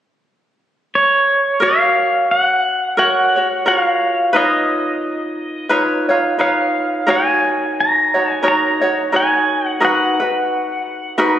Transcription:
0.95 pedal steel guitar C#5
1.60 ukulele F#4 A#4 C#5, pedal steel guitar F5
2.31 pedal steel guitar F#5
2.97 ukulele F#4 A#4 C#5, pedal steel guitar F#5
3.36 ukulele F#4 C#5
3.66 ukulele F4 F#4 A#4 C#5, pedal steel guitar F#5
3.79 pedal steel guitar F5
4.33 ukulele D#4 F4 B4 C#5, pedal steel guitar D#5
5.69 ukulele D#4 F4 B4 C#5
6.09 ukulele D#4 F4 C#5
6.39 ukulele D#4 F4 B4 C#5, pedal steel guitar F5
7.07 ukulele D#4 F#4 A#4 C#5, pedal steel guitar G#5
7.80 pedal steel guitar A#5
8.14 ukulele D#4 F#4 C#5
8.31 pedal steel guitar G#5
8.43 ukulele D#4 F#4 A#4 C#5
8.48 pedal steel guitar A#5
8.81 ukulele D#4 F#4 C#5
9.12 ukulele D#4 F#4 A#4 C#5, pedal steel guitar G#5
9.67 pedal steel guitar F#5
9.80 ukulele D#4 F#4 A#4 B4
9.85 pedal steel guitar F#5
10.20 ukulele D#4 F#4 B4
11.18 ukulele D#4 F#4 A#4 B4

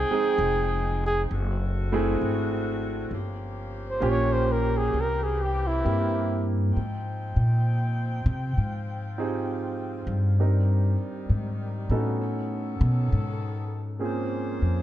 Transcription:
Already playing: saxophone section F3 G#3 D#4 G5, grand piano G#3 C4 D#4 G5, flugelhorn G#4
0.10 grand piano G#3 C4 D#4 G#4, muted upright bass stroke
0.38 upright bass F1
1.06 flugelhorn G#4
1.31 upright bass F#1, saxophone section D3 A3 C4 F#4
1.92 grand piano A3 C4 E4 G#4
2.21 upright bass G#1
3.11 upright bass G1, saxophone section F3 A#3 C#4 G4
3.90 flugelhorn C5
4.00 upright bass A#1, grand piano A#3 C#4 F4 G4
4.09 flugelhorn C#5
4.33 flugelhorn C5
4.52 flugelhorn A#4
4.78 flugelhorn G#4
4.94 upright bass C2, saxophone section E3 C4
5.00 flugelhorn A#4
5.23 flugelhorn G#4
5.42 flugelhorn G4
5.67 flugelhorn E4
5.84 upright bass G2, grand piano A#3 C4 E4 G4
6.72 saxophone section F3 C4 D#4 G5
6.77 upright bass G#2
7.36 upright bass A#2
8.26 upright bass C3
8.58 upright bass G#2, saxophone section F4
9.18 grand piano C4 D#4 F4 G4 G#4
10.07 upright bass G2
10.39 saxophone section D#3 G3, grand piano C4 D4 D#4 G4 A#4
11.30 upright bass G#2
11.90 upright bass A2, grand piano B3 C#4 D#4 F#4 A4
12.21 saxophone section D#3 B3 C#4 A4
12.81 upright bass B2
13.12 upright bass G#2
13.99 grand piano A#3 C4 C#4 F4 G#4, saxophone section C5
14.04 saxophone section F3 A#3 G#4
14.62 upright bass F2

